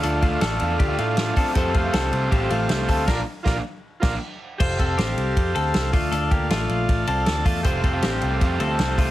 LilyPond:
<<
  \new Staff \with { instrumentName = "Transistor combo organ" } { \time 4/4 \key f \major \tempo 4 = 158 << { r1 | r1 | r1 | r1 |
r2 r8 f''8 a''4 | r1 | } \\ { <f' a' d'' f''>1 | <g' a' c'' f''>1 | <f' bes' d'' f''>8 r8 <f' bes' d'' f''>8 r4 <f' bes' d'' f''>8 r4 | <g' a' c'' f''>2.~ <g' a' c'' f''>8 <f' a' d'' f''>8~ |
<f' a' d'' f''>1 | <g' a' c'' f''>1 | } >> }
  \new Staff \with { instrumentName = "Clean electric guitar" } { \time 4/4 \key f \major <d' a'>8 <a f'>8 <d' a'>4 <d' g'>8 <a f'>4 <c' a'>8 | <c' a'>8 <a f'>8 <c' a'>4 <c' g'>8 <a f'>4 <c' a'>8 | <d' bes'>8 r2. r8 | <f' c''>8 <c' a'>8 <c' g'>4. <c' a'>4 <a f'>8 |
<d' a'>8 <bes g'>8 <a f'>4. <c' a'>4 <a f'>8 | <f' c''>8 <c' a'>8 <c' g'>4. <c' a'>4 <a f'>8 | }
  \new Staff \with { instrumentName = "Overdriven electric guitar" } { \time 4/4 \key f \major <d f a d' f'>8. <a d' f'>8. <f a d' f'>8. <a d' f'>8. <f a d' f'>8 <f a d' f'>8 | <f, c g a c' f'>8. <g a c' f'>8. <g a c' f'>8. <g a c' f'>8. <g a c' f'>8 <g a c' f'>8 | <bes, f bes d' f'>8 r8 <bes d' f'>8 r4 <bes d' f'>8 r4 | r1 |
r1 | <g a c' f'>8. <f, c g a c' f'>8. <g a c' f'>8 <f, c g a c' f'>8. <g a c' f'>8. <f, c g a c' f'>8 | }
  \new Staff \with { instrumentName = "Picked electric bass" } { \clef bass \time 4/4 \key f \major d,4 a,,8 e,8 d,8 a,4 r8 | f,4 c,8 c,8 a,,8 a,,8 c,8 d,8 | bes,,8 r8 bes,,8 r4 bes,,8 r4 | f,,8 f,,8 a,,8 c,8 f,8 d,8 c,8 d,8 |
d,8 r8 a,,8 bes,,8 a,,8 c,8 d,8 e,8 | f,,8 f,,8 a,,8 c,8 f,8 d,8 c,8 c,8 | }
  \new DrumStaff \with { instrumentName = "Drums" } \drummode { \time 4/4 <hhp cymr>8 <bd cymr>8 <cymr sn>8 cymr8 <bd cymr>8 cymr8 <cymr sn>8 <hho bd cymr>8 | <hhp bd cymr>8 <bd cymr>8 <cymr sn>8 cymr8 <bd cymr>8 cymr8 <cymr sn>8 <hho bd cymr>8 | <cymc bd sn>4 <bd sn>4 r8 <cymc bd sn>8 r4 | <cymc bd>8 <bd cymr>8 <cymr sn>8 cymr8 <bd cymr>8 cymr8 <cymr sn>8 <hho bd cymr>8 |
<hhp cymr>8 <bd cymr>8 <cymr sn>8 cymr8 <bd cymr>8 cymr8 <cymr sn>8 <hho bd cymr>8 | <hhp bd cymr>8 <bd cymr>8 <cymr sn>8 cymr8 <bd cymr>8 cymr8 <cymr sn>8 <hho bd cymr>8 | }
>>